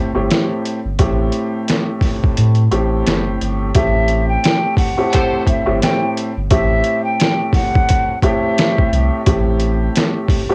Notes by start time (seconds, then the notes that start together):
0.15 G1 A2 A3 C4 G4
0.31 snare, closed hi-hat
0.65 closed hi-hat
0.85 G1
0.99 A1 A2 A3 C4 G4, kick, closed hi-hat
1.32 closed hi-hat
1.68 snare, closed hi-hat
2.01 kick, snare, open hi-hat
2.24 kick
2.37 A2, closed hi-hat
2.55 closed hi-hat
2.71 A1 A2 A3 C4 G4, closed hi-hat
3.06 F#1, snare, closed hi-hat
3.41 G1, closed hi-hat
3.75 A1 A2 A3 C4 G4 E5, kick, closed hi-hat
4.08 closed hi-hat
4.29 G5
4.44 snare, closed hi-hat
4.77 F#5, kick, open hi-hat
4.97 A2 A3 C4 G4
5.13 G4 A4 C5, kick, closed hi-hat
5.47 E5, kick, closed hi-hat
5.66 G1 A2 A3 C4 G4
5.82 G5, snare, closed hi-hat
6.17 closed hi-hat
6.37 G1
6.51 A1 A2 A3 C4 G4 E5, kick, closed hi-hat
6.84 closed hi-hat
7.05 G5
7.20 snare, closed hi-hat
7.53 F#5, kick, snare, open hi-hat
7.75 kick
7.89 kick, closed hi-hat
8.22 A2 A3 C4 G4 E5, kick, closed hi-hat
8.58 snare, closed hi-hat
8.79 kick
8.93 C2, closed hi-hat
9.26 A1 A2 A3 C4 G4, kick, closed hi-hat
9.60 closed hi-hat
9.96 snare, closed hi-hat
10.29 kick, open hi-hat
10.49 A2 A3 C4 G4